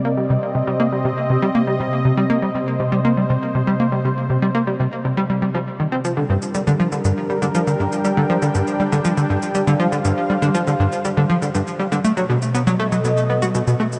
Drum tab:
SH |----------------|----------------|----------------|x--xxx-xx--xxx-x|
T1 |----------------|----------------|----------------|-----o-----o----|

SH |x--xxx-xxx-xxx-x|x--xxx-xx--xxx-x|xx-xxx-xxx-xxx-x|
T1 |-o-----o-----o--|---o-----o-----o|-----o-----o----|